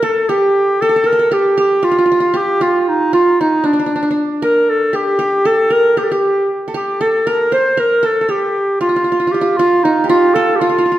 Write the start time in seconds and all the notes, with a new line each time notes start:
0.03 A4
0.29 G4
0.81 A4
0.89 A4
0.96 A4
1.04 A4 A#4
1.12 A4
1.19 A4
1.31 G4
1.58 G4
1.83 F4
1.91 F4
1.99 F4
2.06 F4
2.12 F4
2.20 F4
2.34 G4
2.61 F4
2.80 F4
2.88 D#4
3.13 F4
3.40 D#4
3.64 D4
3.73 D4
3.79 D4
3.86 D4
3.96 D4
4.03 D4
4.11 D4
4.42 A#4
4.70 A4
4.93 G4
5.19 G4
5.45 A4
5.70 A#4
5.97 G4
6.04 A4
6.12 G4
6.68 A4
6.74 G4
7.01 A4
7.27 A#4
7.52 C5
7.77 A#4
8.03 A4
8.21 A4
8.29 G4
8.81 F4
8.89 F4
8.96 F4
9.04 F4
9.12 F4
9.20 F4
9.27 F4
9.32 F4 G4
9.41 F4
9.57 F4
9.83 D#4
10.04 G4
10.09 F4
10.34 A4
10.56 G4
10.60 F4
10.69 F4
10.78 F4
10.86 F4
10.92 F4